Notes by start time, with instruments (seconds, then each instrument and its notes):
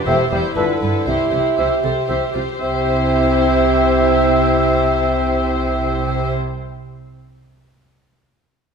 0.06 double bass section E1, cello section E2, bassoon A3, viola section E4, french horn section G4 C5, violin section G4 C5, clarinet C5, oboe E5, flute G5
0.31 double bass section E1, cello section E2, bassoon G3, viola section E4, violin section G4 C5
0.55 double bass section G1, cello section G2, bassoon D3, viola section E4, french horn section F4 B4, violin section A4 B4, clarinet B4, oboe E5, flute A5
0.80 double bass section G1, cello section G2, viola section E4, violin section A4 B4
1.04 double bass section C2, cello section C3, bassoon C3, viola section E4, violin section C5
1.09 violin section G4
1.30 double bass section C2, cello section C3, viola section E4, violin section C5
1.35 violin section G4
1.56 double bass section C2, cello section C3, french horn section E4 C5, viola section E4, violin section G4 C5, clarinet C5, oboe E5, flute G5
1.83 double bass section C2, cello section C3, violin section G4 C5, viola section A4
2.07 double bass section C2, cello section C3, french horn section E4 C5, violin section G4 C5, viola section G4, clarinet C5, oboe E5, flute G5
2.33 double bass section C2, cello section C3, viola section F4, violin section G4 C5
2.58 double bass section C2, bassoon C3, cello section C3, french horn section C4 C5, viola section E4, violin section G4 C5, clarinet C5, oboe E5, flute G5